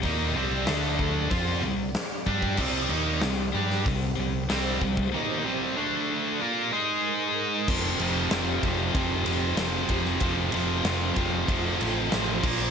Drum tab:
CC |----------------|x---------------|----------------|x---------------|
RD |----------------|----------------|----------------|--x-x-x-x-x-x-x-|
HH |o---o---o---o---|----o---o---o---|----------------|----------------|
SD |----o-------o---|----o--o----o---|----------------|----o-------o--o|
BD |o-----o-o-----oo|o-------o-----oo|----------------|o-----o-o-----o-|

CC |--------------x-|
RD |x-x-x-x-x-x-x---|
HH |----------------|
SD |----o-------o--o|
BD |o-----o-o-----o-|